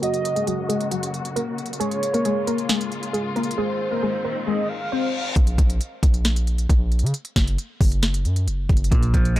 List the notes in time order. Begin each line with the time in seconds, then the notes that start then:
Already playing: C#3 A#3
0.02 F#3 F#4 D#5, closed hi-hat
0.14 closed hi-hat
0.25 closed hi-hat
0.36 G#3 G#4, closed hi-hat
0.47 F#3 F#4, closed hi-hat
0.69 G#3 G#4, closed hi-hat
0.81 closed hi-hat
0.91 F#3 F#4, closed hi-hat
1.03 closed hi-hat
1.14 closed hi-hat
1.25 closed hi-hat
1.36 A#3 A#4, closed hi-hat
1.58 closed hi-hat
1.66 closed hi-hat
1.73 closed hi-hat
1.80 G#3 A#3 F4 G#4 C#5, closed hi-hat
1.91 closed hi-hat
2.03 closed hi-hat
2.14 A#3 A#4, closed hi-hat
2.25 G#3 G#4, closed hi-hat
2.47 A#3 A#4, closed hi-hat
2.58 closed hi-hat
2.69 G#3 G#4, snare, closed hi-hat
2.81 closed hi-hat
2.92 closed hi-hat
3.03 closed hi-hat
3.13 G#3 G#4, closed hi-hat
3.36 A#3 A#4, closed hi-hat
3.43 closed hi-hat
3.51 closed hi-hat
3.58 D#3 G#3 C4 G#4 C5
3.91 A#3 A#4
4.03 G#3 G#4
4.25 A#3 A#4
4.47 G#3 G#4 D#5, reverse cymbal
4.69 F5
4.92 C4 C5
5.36 A#1, kick, closed hi-hat
5.47 closed hi-hat
5.58 A#1, kick, closed hi-hat
5.70 closed hi-hat
5.81 closed hi-hat
6.03 A#1, kick, closed hi-hat
6.14 closed hi-hat
6.25 snare, closed hi-hat
6.36 closed hi-hat
6.47 closed hi-hat
6.58 closed hi-hat
6.69 A#1, kick, closed hi-hat
6.92 closed hi-hat
6.99 C#3, closed hi-hat
7.06 closed hi-hat
7.14 closed hi-hat
7.25 closed hi-hat
7.36 F#1, kick, snare, closed hi-hat
7.47 closed hi-hat
7.58 closed hi-hat
7.81 F#1, kick, open hi-hat
7.92 closed hi-hat
8.03 snare, closed hi-hat
8.14 closed hi-hat
8.25 F#2, closed hi-hat
8.36 closed hi-hat
8.47 F#1, closed hi-hat
8.69 F#1, kick, closed hi-hat
8.77 closed hi-hat
8.84 closed hi-hat
8.92 A#1 A#2, kick, closed hi-hat
9.03 closed hi-hat
9.14 A#1 F3, kick, closed hi-hat
9.25 closed hi-hat
9.36 G#3, closed hi-hat